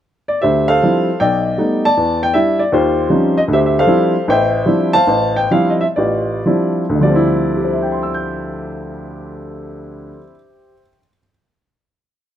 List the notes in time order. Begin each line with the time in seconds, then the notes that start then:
0.28 D5
0.42 D2 G4 C5 E5
0.68 A4 C5 F5
0.83 F3 G3 C4 D4 E4
1.20 B1 D5 D#5 G5
1.58 G3 A3 B3 D#4
1.85 D5 A5
1.97 E2
2.23 G5
2.34 G3 D4 E4 E5
2.59 D5
2.72 D#2 F4 G4 C5
3.09 F3 G3 C4 C#4 D#4
3.38 D#5
3.48 D2
3.53 G4 C5 E5
3.66 E5
3.79 A4 C5 F5
3.87 F3 G3 C4 D4 E4
4.28 A1 C5 E5 G5
4.66 F3 G3 C4 D4 E4
4.93 C5 F5 A5
5.07 A1
5.36 G5
5.51 F3 G3 C4 D4 E4 F5
5.70 D#5
5.81 E5
5.96 A1 F4 G4 D5
6.46 F3 G3 C4 D4 E4
6.89 D2
6.95 D3
7.01 F3 G3 D5
7.10 C4
7.15 E4
7.57 G4
7.64 C5
7.72 E5
7.82 G5
7.92 C6
8.03 E6
8.14 G6